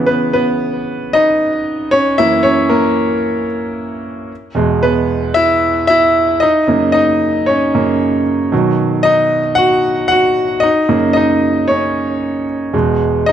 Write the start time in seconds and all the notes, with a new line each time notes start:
Already playing: C#3 E3 B3
0.06 B3 B4
0.33 B3 B4
1.13 D#4 D#5
1.91 C#4 C#5
2.18 F#2 E3 A#3 E4 E5
2.43 C#4 C#5
2.69 A#3 A#4
4.55 E2 B2 G#3
4.83 B3 B4
5.34 E4 E5
5.87 E4 E5
6.40 D#4 D#5
6.67 F#2 C#3 A#3
6.92 D#4 D#5
7.46 C#4 C#5
7.74 F#2 C#3 A#3
8.52 B2 D#3 F#3
9.03 D#4 D#5
9.55 F#4 F#5
10.08 F#4 F#5
10.60 D#4 D#5
10.88 F#2 C#3 A#3
11.13 D#4 D#5
11.68 C#4 C#5
12.73 E2 B2 G#3
13.26 D#4 D#5